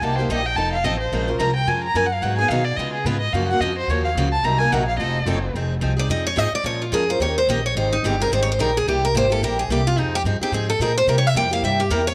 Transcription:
0.01 C2 C3 G3 A#3 D#4 G4 A5
0.18 A#3 D#4 G4 C5
0.28 A#1 C3 G3 A#3 D#4 G4 D#5
0.46 G5
0.56 F1 F3 C4 D#4 A4 A5
0.73 F5
0.84 A1 F3 C4 D#4 A4 D#5
0.99 C5
1.12 A#1 F3 G#3 C#4 F4 A#4
1.28 C#4 F4 A#4
1.38 C2 F3 G#3 C#4 F4 A#4 A#5
1.56 G5
1.66 F2 F3 G#3 C#4 F4 A#4 G#5
1.84 A#5
1.94 F#2 F3 G#3 C#4 F4 A#4 G#5
2.06 F#5
2.13 F5
2.22 G#2 D#3 F#3 B3 D#4 G#4 F#5
2.37 B3 D#4 G#4 G#5
2.48 B2 D#3 F#3 B3 D#4 G#4 F5
2.64 D5
2.76 C#3 G#3 B3 F4 G#4 D#5
2.93 G#4
3.04 G#2 C#3 G#3 B3 F4 G#4 B4
3.21 D#5
3.33 F#2 C#3 F3 A#3 C#4 F#4 F5
3.48 C#4 F#4 F#5
3.53 A#3
3.60 F2 C#3 F3 A#3 C#4 F#4 D#5
3.78 C5
3.87 D#2 C#3 F3 A#3 C#4 F#4 C#5
4.04 F5
4.15 C#2 C#3 F3 A#3 C#4 F#4
4.32 A5
4.43 C2 C3 F#3 A#3 D#4 A#4 A#5
4.59 A#3 D#4 A#4 G#5
4.70 A#1 C3 F#3 A#3 D#4 A#4 F#5
4.88 F5
4.97 F1 F3 C4 D#4 A4 D#5
5.26 F#1 F3 C4 D#4 A4
5.54 F1 F3 C4 D#4 G#4
5.81 C2 F3 C4 D#4 G#4
5.97 C4 D#4 G#4 D5
6.09 F2 F3 C4 D#4 G#4 D#5
6.27 C#5
6.36 G#2 F3 C4 D#4 G#4 D#5
6.52 D5, muted upright bass stroke
6.64 A#2 F3 G#3 C#4 F4 A#4 C#5
6.82 F4
6.92 F2 F3 G#3 C#4 F4 G#4 A#4
7.09 C#4 F4 A#4 C5
7.19 D#2 D#3 A#3 C#4 G4 A#4 C#5
7.38 C5
7.47 A#1 D#3 A#3 C#4 G4 A#4 D#5
7.66 C#5
7.75 G#1 D#3 G3 C4 D#4 G#4 C5
7.93 D#4
8.03 G1 D#3 G3 C4 D#4 G4 G#4
8.20 C4 D#4 G#4 A#4
8.31 G#1 D#3 G3 C4 D#4 G#4 C5
8.43 C#5
8.52 C5
8.59 A#1 D#3 G3 C4 D#4 G#4 A#4
8.77 G#4
8.86 C2 C3 G3 A#3 E4 G4
9.05 A#4
9.14 G#1 C3 G3 A#3 E4 G4 C5
9.30 A#3 E4 G4 A4
9.42 A#1 C3 G3 A#3 E4 G4 A#4
9.59 G#4
9.68 C2 C3 G3 A#3 E4 G4
9.87 F4
9.97 F2 F3 C4 D#4 G#4
10.15 G4
10.24 G2 F3 C4 D#4 G#4
10.40 C4 D#4 G4 G#4, muted upright bass stroke
10.51 G#2 F3 C4 D#4 G#4
10.70 A4
10.79 A#2 F3 C4 D#4 G#4 A#4
10.97 C5
11.07 C3 G3 A#3 E4 G4 A#4
11.18 C#5
11.27 E5
11.34 F2 C3 G3 A#3 E4 G4 G5
11.51 A#3 E4 G4 F5
11.62 G2 C3 G3 A#3 E4 G4 E5
11.80 G4
11.90 E2 C3 G3 A#3 E4 G4 A#4
12.07 C#5

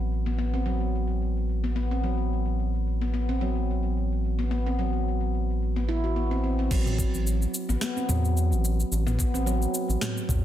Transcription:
Already playing: A1
0.26 B3
0.38 B3
0.54 C4
0.66 F#3
1.64 B3
1.76 B3
1.91 C4
2.04 F#3
3.01 B3
3.14 B3
3.29 C4
3.41 F#3
4.39 B3
4.51 B3
4.66 C4
4.79 F#3
5.76 B3
5.89 E4
6.04 F#4
6.16 B3
6.31 C4
6.44 C4
6.59 C4
6.71 A1 F#3, kick, crash, shaker
6.86 mid tom, shaker
6.99 kick, shaker
7.14 A1, shaker
7.27 shaker
7.42 shaker
7.54 shaker
7.69 A1 B3, shaker
7.81 B3, snare, shaker
7.97 C4, shaker
8.09 E2 F#3, mid tom, shaker
8.25 shaker
8.37 shaker
8.52 A1, shaker
8.65 shaker
8.80 shaker
8.92 A1, shaker
9.07 B3, mid tom, shaker
9.19 B3, kick, shaker
9.34 A1 C4, shaker
9.46 F#3, shaker
9.62 shaker
9.74 shaker
9.89 A1, shaker
10.01 snare, mid tom, shaker
10.17 shaker
10.29 E2, kick, mid tom, shaker

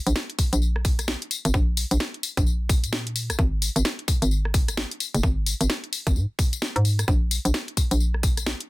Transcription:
0.07 A#1, closed hi-hat, tambourine
0.16 snare, tambourine
0.30 closed hi-hat
0.39 kick, open hi-hat, tambourine
0.53 A#1, closed hi-hat, tambourine
0.62 tambourine
0.76 cross-stick
0.85 kick, open hi-hat, tambourine
0.99 cross-stick, closed hi-hat, tambourine
1.08 snare
1.22 closed hi-hat
1.31 open hi-hat, tambourine
1.45 G#1, closed hi-hat, tambourine
1.54 A#1, kick, tambourine
1.77 open hi-hat, tambourine
1.91 A#1, closed hi-hat, tambourine
2.00 snare, tambourine
2.14 closed hi-hat
2.23 open hi-hat, tambourine
2.37 A#1, kick, closed hi-hat, tambourine
2.46 tambourine
2.69 kick, open hi-hat, tambourine
2.84 A#2, closed hi-hat, tambourine
2.93 snare
3.07 closed hi-hat
3.16 open hi-hat, tambourine
3.30 G#1, cross-stick, closed hi-hat, tambourine
3.39 G#1, kick, tambourine
3.62 open hi-hat, tambourine
3.76 G#1, closed hi-hat, tambourine
3.85 snare
3.99 closed hi-hat
4.08 kick, open hi-hat, tambourine
4.22 G#1, closed hi-hat, tambourine
4.31 tambourine
4.45 cross-stick
4.54 kick, open hi-hat, tambourine
4.68 cross-stick, closed hi-hat, tambourine
4.77 snare
4.91 closed hi-hat
5.00 open hi-hat, tambourine
5.14 F#1, closed hi-hat, tambourine
5.23 G#1, kick, tambourine
5.46 open hi-hat, tambourine
5.61 G#1, closed hi-hat, tambourine
5.70 snare, tambourine
5.84 closed hi-hat
5.93 open hi-hat, tambourine
6.07 G#1, kick, closed hi-hat, tambourine
6.16 G#2, tambourine
6.39 kick, open hi-hat, tambourine
6.53 closed hi-hat, tambourine
6.62 snare, tambourine
6.76 G#2, closed hi-hat
6.85 open hi-hat, tambourine
6.99 cross-stick, closed hi-hat, tambourine
7.08 A#1, kick, tambourine
7.31 open hi-hat, tambourine
7.45 A#1, closed hi-hat, tambourine
7.54 snare, tambourine
7.68 closed hi-hat
7.77 kick, open hi-hat, tambourine
7.91 A#1, closed hi-hat, tambourine
8.00 tambourine
8.14 cross-stick
8.23 kick, open hi-hat, tambourine
8.37 cross-stick, closed hi-hat, tambourine
8.46 snare, tambourine
8.61 closed hi-hat

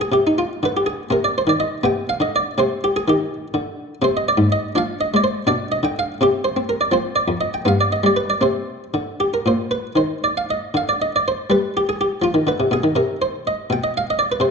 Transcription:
Already playing: D4
0.01 G#4
0.12 C3 G4
0.27 D#4
0.38 F4
0.63 D3 B4
0.77 G4
0.86 G#4
1.10 C3 C4 A#4
1.24 D5
1.38 C5
1.47 D#3 D5
1.60 D#5
1.83 C3 B3 G5
2.09 F5
2.20 D3 D#5
2.36 D5
2.58 C3 C4 C5
2.84 G4
2.96 G#4
3.08 D#3 G4
3.54 D3
4.02 C3 C4 C5
4.17 D#5
4.28 D5
4.37 G#2
4.52 D#5
4.75 F3 D4 F5
5.01 D#5
5.14 G#3 D5
5.24 C5
5.47 B2 D4 D5
5.72 D#5
5.83 D3 G5
5.99 F5
6.21 C3 C4 G4
6.44 C5
6.57 C4
6.69 A#4
6.81 D5
6.91 F3 C4 C5
7.16 D5
7.28 F2
7.41 D#5
7.54 G5
7.65 G2 B3 F5
7.81 D5
7.92 D#5
8.03 G3 D5
8.16 B4
8.30 D5
8.41 C3 C4 C5
8.94 D3
9.20 G4
9.34 A#4
9.46 A#2 C5
9.71 B4
9.96 D#3 C5
10.24 D5
10.37 F5
10.50 D#5
10.74 D3 F5
10.89 D5
11.02 D#5
11.16 D5
11.28 C5
11.50 G3 B4
11.77 G4
11.89 G#4
12.01 G4
12.22 F3 F4
12.34 D#3
12.47 D3 B4
12.60 C3
12.71 B2 G#4
12.83 D#3
12.95 C3 A#4
13.22 C5
13.47 D#5
13.70 B2 G5
13.84 D#5
13.97 F5
14.10 D#5
14.19 D5
14.32 B4
14.40 C3 C5

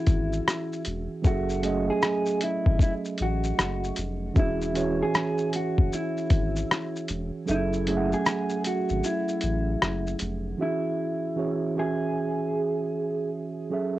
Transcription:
Already playing: E3 C#4 E4 F#4 G#4 E5
0.06 G#1, kick, closed hi-hat, shaker
0.32 shaker
0.48 cross-stick, shaker
0.72 shaker
0.85 E1, closed hi-hat, shaker
1.22 F#1 F#3 C#4 G#4 A4 E5, kick, shaker
1.27 F#4
1.49 shaker
1.62 F#3 A3 C#4 G#4 D#5, closed hi-hat, shaker
1.90 G#4
2.02 cross-stick, shaker
2.26 shaker
2.41 E4, closed hi-hat, shaker
2.66 G#1, kick
2.79 E4, kick, shaker
3.05 shaker
3.18 A1, closed hi-hat, shaker
3.22 F#4
3.44 shaker
3.59 F#1, cross-stick, shaker
3.84 shaker
3.96 F1, closed hi-hat, shaker
4.34 E1 E3 C#4 F#4 G#4 E5, kick, shaker
4.39 E4
4.61 shaker
4.74 E3 C#4 F#4 G#4 C#5, closed hi-hat, shaker
5.02 G#4
5.14 cross-stick, shaker
5.38 shaker
5.53 F#4, closed hi-hat, shaker
5.78 F#1, kick
5.92 E4, shaker
6.17 shaker
6.30 G#1, kick, closed hi-hat, shaker
6.56 shaker
6.71 cross-stick, shaker
6.96 shaker
7.08 E1, closed hi-hat, shaker
7.46 F#1 F#3 C#4 G#4 A4 E5, shaker
7.51 E4
7.73 shaker
7.87 F#3 A3 C#4 G#4 E5, closed hi-hat, shaker
7.97 F#5
8.12 G#4, shaker
8.26 cross-stick, shaker
8.49 shaker
8.64 F#4, closed hi-hat, shaker
8.89 G#1, shaker
9.04 E4, shaker
9.28 shaker
9.41 A1, closed hi-hat, shaker
9.82 F#1, cross-stick, shaker
10.07 shaker
10.19 F1, closed hi-hat, shaker
10.57 E3 C#4 F#4 G#4 E5
10.62 E4
11.36 E3 C#4 F#4 G#4 C#5
11.75 E3 C#4 F#4 G#4 E5
11.79 G#4
13.70 F#3 C#4 G#4 A4 E5

